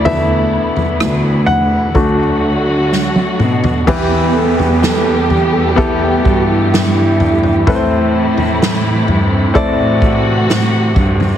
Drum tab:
CC |----------------|x---------------|----------------|
SD |----r-------o---|----o-------o---|----o-------o---|
T1 |-------------o--|----------------|----------------|
T2 |--------------o-|----------------|----------------|
FT |o--o--o-o------o|o--o--o-o-----oo|o--o--o-o-----oo|
BD |--------o-------|o-------o-o-----|o-------o-o---o-|